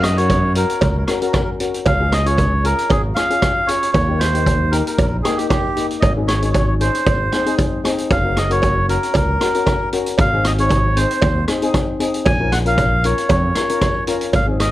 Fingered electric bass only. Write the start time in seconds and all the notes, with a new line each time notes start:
Already playing: F#2
0.82 C#2
1.86 C#2
2.91 G#1
3.95 D#2
4.99 A#1
6.03 G#1
7.07 G#1
8.11 F#1
9.15 C#2
10.19 G#1
11.23 D#2
12.26 A#1
13.30 F2
14.33 G#1